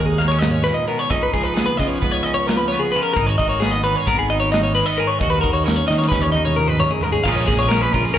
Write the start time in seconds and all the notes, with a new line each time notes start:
Already playing: D#2 D#3 F#4
0.00 G#3
0.06 G#4
0.18 A#3 F5, snare, closed hi-hat
0.28 C#4 C#5
0.39 D#5, snare, closed hi-hat
0.44 G#2
0.51 C#5
0.64 A#2 B4, snare, closed hi-hat
0.74 D#5
0.87 B2 A#4, closed hi-hat
0.99 C#5
1.10 C#2 C#3 D#4 D#5, kick, closed hi-hat
1.23 B4
1.33 C#2 F3 G#4, kick, closed hi-hat
1.44 B4
1.54 B3 G#4, snare, closed hi-hat
1.66 B4
1.77 C#3 F3 D#5, kick, closed hi-hat
1.88 C#5
1.99 B3 B4, kick
2.03 C#2, closed hi-hat
2.12 C#5
2.23 C#4 D#5, closed hi-hat
2.34 C#5
2.47 F3 A#4, snare, closed hi-hat
2.57 B4
2.68 C#5, closed hi-hat
2.72 B3, snare
2.79 G#4
2.92 C#3 B4, closed hi-hat
2.96 F4
3.03 A#4
3.13 G#1 D#4 A#4, kick, closed hi-hat
3.18 G#2
3.27 F#4 C#5
3.38 G#1 D#3 D#5, kick, closed hi-hat
3.49 C#5
3.60 B3 G#4, snare, closed hi-hat
3.72 D#5
3.83 D#3 B4, closed hi-hat
3.96 C#5
4.07 G#1 B3 A#4, kick, closed hi-hat
4.19 G#4
4.30 D#4 D#5, closed hi-hat
4.40 C#5
4.52 D#3 D#5, snare, closed hi-hat
4.63 C#5
4.75 G#3 B4, closed hi-hat
4.86 B3 D#5
4.98 G#2 G#4 A#4, closed hi-hat
5.07 C#5
5.19 D#2 F#4 D#5, kick, closed hi-hat
5.30 B4
5.41 D#2 D#3 A#4, kick, closed hi-hat
5.53 C#5
5.64 C#4 A#4, closed hi-hat
5.68 snare
5.76 C#5
5.86 D#3 D#5
5.91 snare
5.98 C#5, snare
6.09 D#2 C#4 B4, kick
6.13 snare
6.22 C#5, high tom
6.32 D#4 D#5, high tom
6.45 C#5, mid tom
6.56 F2 A#4, mid tom
6.68 B4, mid tom
6.79 F#2 C#5, mid tom
6.91 G#4, floor tom
7.01 G#2 A#4, floor tom
7.12 G#4, floor tom
7.24 A#1 A#2 F3 F5, kick, crash
7.28 G#3 C#4 G#4
7.36 C#5
7.47 A#1 G#3 G#4, kick, snare, closed hi-hat
7.59 C#5
7.69 C#4 A#4, snare, closed hi-hat
7.82 B4
7.93 A#1 F4 A#4, kick, closed hi-hat
8.05 G#4
8.14 C#4 A#4